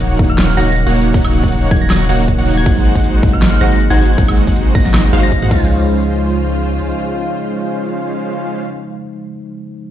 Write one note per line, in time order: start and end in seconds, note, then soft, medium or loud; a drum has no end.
0.00 0.18 D#1 loud
0.00 0.16 C#3 medium
0.00 2.63 D#3 medium
0.00 0.17 F3 medium
0.00 0.17 F#3 medium
0.00 0.17 A#3 medium
0.00 0.18 A#3 medium
0.00 2.63 C#4 medium
0.00 0.17 D#4 medium
0.00 0.18 D#4 medium
0.00 0.17 F#4 medium
0.00 0.17 C#5 medium
0.00 0.17 F#5 medium
0.00 5.47 F#5 medium
0.00 closed hi-hat medium
0.18 0.56 D#1 loud
0.18 0.55 C#3 medium
0.18 0.55 F#3 medium
0.18 0.55 A#3 medium
0.18 0.55 D#4 medium
0.18 0.56 D#4 loud
0.18 0.55 F#4 medium
0.18 0.55 C#5 medium
0.18 0.55 F#5 medium
0.18 kick loud
0.18 closed hi-hat soft
0.24 closed hi-hat medium
0.30 0.43 F6 medium
0.38 snare loud
0.38 closed hi-hat medium
0.57 0.85 D#1 loud
0.57 0.72 A#3 medium
0.57 0.72 D#4 medium
0.57 0.72 F#4 medium
0.57 0.72 C#5 medium
0.57 0.72 F#5 medium
0.57 0.71 A#6 medium
0.57 closed hi-hat medium
0.68 closed hi-hat soft
0.72 closed hi-hat medium
0.76 closed hi-hat medium
0.87 1.12 D#1 loud
0.87 1.12 A#3 medium
0.87 1.12 D#4 medium
0.87 1.12 F#4 medium
0.87 1.12 C#5 medium
0.87 1.12 F#5 medium
0.95 closed hi-hat medium
0.99 closed hi-hat medium
1.02 closed hi-hat medium
1.12 1.42 D#1 loud
1.12 1.68 C#3 medium
1.12 1.69 F3 medium
1.12 1.69 F#3 medium
1.12 1.41 A#3 medium
1.12 1.70 A#3 medium
1.12 1.41 D#4 medium
1.12 1.70 D#4 medium
1.12 1.41 F#4 medium
1.12 1.41 C#5 medium
1.12 1.41 F#5 loud
1.12 1.41 F#5 medium
1.12 kick loud
1.12 closed hi-hat medium
1.12 crash medium
1.24 high woodblock medium
1.33 closed hi-hat medium
1.43 1.69 D#1 loud
1.43 1.69 A#3 medium
1.43 1.69 D#4 medium
1.43 1.69 F#4 medium
1.43 1.69 C#5 medium
1.43 1.69 F#5 medium
1.43 kick medium
1.43 closed hi-hat soft
1.48 closed hi-hat medium
1.52 closed hi-hat medium
1.70 2.07 D#1 loud
1.70 2.07 C#3 medium
1.70 2.07 F#3 medium
1.70 2.07 A#3 medium
1.70 2.08 D#4 loud
1.70 2.07 F#4 medium
1.70 2.07 F#5 medium
1.70 1.79 G#6 medium
1.70 kick loud
1.70 closed hi-hat soft
1.76 closed hi-hat medium
1.81 1.95 A#6 medium
1.90 snare loud
1.90 closed hi-hat medium
1.90 high woodblock medium
2.09 2.36 D#1 loud
2.09 2.24 A#3 medium
2.09 2.24 D#4 medium
2.09 2.24 F#4 medium
2.09 2.24 C#5 medium
2.09 2.24 F#5 loud
2.09 2.24 F#5 medium
2.09 closed hi-hat medium
2.19 closed hi-hat soft
2.24 closed hi-hat medium
2.28 kick medium
2.28 closed hi-hat medium
2.38 2.64 D#1 loud
2.38 2.64 A#3 medium
2.38 2.64 D#4 medium
2.38 2.64 F#4 medium
2.38 2.64 C#5 medium
2.38 2.64 F#5 medium
2.47 closed hi-hat soft
2.51 closed hi-hat medium
2.53 2.70 G#6 medium
2.53 closed hi-hat medium
2.64 2.93 G#1 loud
2.64 3.20 C3 medium
2.64 3.21 F#3 medium
2.64 2.93 G#3 medium
2.64 5.48 G#3 medium
2.64 3.21 G#3 medium
2.64 3.22 A#3 medium
2.64 5.48 C4 medium
2.64 2.93 D#4 medium
2.64 3.22 D#4 medium
2.64 2.93 F#4 medium
2.64 2.93 F#5 medium
2.64 kick loud
2.64 closed hi-hat medium
2.64 crash soft
2.85 closed hi-hat medium
2.95 3.21 G#1 loud
2.95 3.21 G#3 medium
2.95 3.21 D#4 medium
2.95 3.21 F#4 medium
2.95 3.21 C5 medium
2.95 3.21 F#5 medium
2.95 kick medium
2.95 closed hi-hat soft
3.00 closed hi-hat medium
3.04 closed hi-hat medium
3.22 3.59 G#1 loud
3.22 3.59 C3 medium
3.22 3.59 F#3 medium
3.22 3.59 G#3 medium
3.22 3.59 A#3 medium
3.22 3.59 D#4 medium
3.22 3.60 D#4 loud
3.22 3.59 F#4 medium
3.22 3.59 C5 medium
3.22 3.59 F#5 medium
3.22 kick loud
3.22 closed hi-hat soft
3.28 closed hi-hat medium
3.33 3.47 F6 medium
3.42 snare loud
3.42 closed hi-hat medium
3.61 3.88 G#1 loud
3.61 3.76 G#3 medium
3.61 3.76 D#4 medium
3.61 3.76 F#4 medium
3.61 3.76 C5 medium
3.61 3.76 F#5 medium
3.61 3.76 F#5 loud
3.61 3.75 A#6 medium
3.61 closed hi-hat medium
3.71 closed hi-hat soft
3.76 closed hi-hat medium
3.80 closed hi-hat medium
3.90 4.16 G#1 loud
3.90 4.16 G#3 medium
3.90 4.16 D#4 medium
3.90 4.16 F#4 medium
3.90 4.16 C5 medium
3.90 4.16 F#5 medium
3.90 3.96 G#6 medium
3.99 4.06 G#6 medium
3.99 closed hi-hat soft
4.03 closed hi-hat medium
4.05 closed hi-hat medium
4.16 4.45 G#1 loud
4.16 4.72 C3 medium
4.16 4.72 F#3 medium
4.16 4.73 G#3 medium
4.16 4.45 G#3 medium
4.16 4.73 A#3 medium
4.16 4.45 D#4 medium
4.16 4.45 F#4 medium
4.16 4.45 C5 medium
4.16 4.45 F#5 medium
4.16 4.45 F#5 loud
4.16 kick loud
4.16 closed hi-hat medium
4.16 crash soft
4.20 4.74 D#4 medium
4.28 high woodblock medium
4.37 closed hi-hat medium
4.47 4.73 G#1 loud
4.47 4.73 G#3 medium
4.47 4.73 D#4 medium
4.47 4.73 F#4 medium
4.47 4.73 C5 medium
4.47 4.73 F#5 medium
4.47 kick medium
4.47 closed hi-hat soft
4.52 closed hi-hat medium
4.56 closed hi-hat medium
4.74 5.11 G#1 loud
4.74 5.10 C3 medium
4.74 5.11 F#3 medium
4.74 5.11 G#3 medium
4.74 5.11 A#3 medium
4.74 5.11 D#4 medium
4.74 5.11 D#4 loud
4.74 5.11 F#4 medium
4.74 5.11 C5 medium
4.74 5.11 F#5 medium
4.74 4.82 A#6 medium
4.74 kick loud
4.74 closed hi-hat soft
4.80 closed hi-hat medium
4.85 4.91 A#6 medium
4.85 snare soft
4.94 snare loud
4.94 closed hi-hat medium
4.94 high woodblock medium
5.13 5.40 G#1 loud
5.13 5.40 G#3 loud
5.13 5.40 D#4 medium
5.13 5.40 F#4 medium
5.13 5.40 C5 medium
5.13 5.40 F5 loud
5.13 closed hi-hat medium
5.23 5.70 A#6 medium
5.23 closed hi-hat medium
5.28 closed hi-hat medium
5.32 kick medium
5.32 closed hi-hat medium
5.42 5.50 G#2 loud
5.42 5.50 G#3 loud
5.42 5.51 D#4 medium
5.42 5.51 F#4 medium
5.42 5.50 C5 medium
5.42 5.51 F#5 loud
5.48 6.80 C#2 loud
5.48 8.62 C#3 medium
5.48 8.65 C#3 medium
5.48 8.64 F3 medium
5.48 8.65 G#3 medium
5.48 8.65 C#4 medium
5.48 8.65 F4 medium
5.48 8.65 C5 medium
5.48 8.65 F5 loud
5.48 kick loud
5.48 crash medium
5.53 8.68 D#4 medium
5.53 8.67 C5 medium